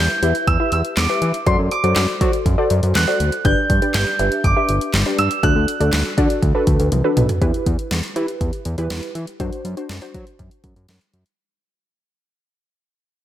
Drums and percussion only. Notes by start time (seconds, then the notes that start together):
0.23 closed hi-hat
0.35 closed hi-hat
0.47 kick, closed hi-hat
0.72 closed hi-hat
0.85 closed hi-hat
0.97 snare, clap, closed hi-hat
1.22 closed hi-hat
1.34 closed hi-hat
1.47 kick, closed hi-hat
1.71 closed hi-hat
1.84 closed hi-hat
1.96 snare, clap, closed hi-hat
2.21 kick, closed hi-hat
2.33 closed hi-hat
2.46 kick, closed hi-hat
2.70 closed hi-hat
2.83 closed hi-hat
2.95 snare, clap, closed hi-hat
3.20 closed hi-hat
3.32 closed hi-hat
3.45 kick, closed hi-hat
3.70 kick, closed hi-hat
3.82 closed hi-hat
3.94 snare, clap, closed hi-hat
4.19 closed hi-hat
4.32 closed hi-hat
4.44 kick, closed hi-hat
4.69 closed hi-hat
4.81 closed hi-hat
4.94 snare, clap, closed hi-hat
5.19 closed hi-hat
5.31 closed hi-hat
5.43 kick, closed hi-hat
5.68 closed hi-hat
5.81 closed hi-hat
5.93 snare, clap, closed hi-hat
6.18 kick, closed hi-hat
6.30 closed hi-hat
6.43 kick, closed hi-hat
6.67 kick, closed hi-hat
6.80 closed hi-hat
6.92 closed hi-hat, high tom
7.17 closed hi-hat, mid tom
7.29 closed hi-hat, floor tom
7.42 kick, closed hi-hat
7.54 closed hi-hat
7.66 kick, closed hi-hat
7.79 closed hi-hat
7.91 snare, closed hi-hat
8.03 closed hi-hat
8.16 closed hi-hat
8.28 closed hi-hat
8.41 kick, closed hi-hat
8.53 closed hi-hat
8.65 closed hi-hat
8.78 closed hi-hat
8.90 snare, closed hi-hat
9.03 closed hi-hat
9.15 closed hi-hat
9.27 closed hi-hat
9.40 kick, closed hi-hat
9.53 closed hi-hat
9.65 closed hi-hat
9.77 closed hi-hat
9.89 snare, closed hi-hat
10.02 closed hi-hat
10.14 kick, closed hi-hat
10.27 closed hi-hat
10.39 kick, closed hi-hat
10.51 closed hi-hat
10.64 kick, closed hi-hat
10.76 closed hi-hat
10.88 snare, closed hi-hat
11.01 closed hi-hat
11.14 closed hi-hat
11.26 closed hi-hat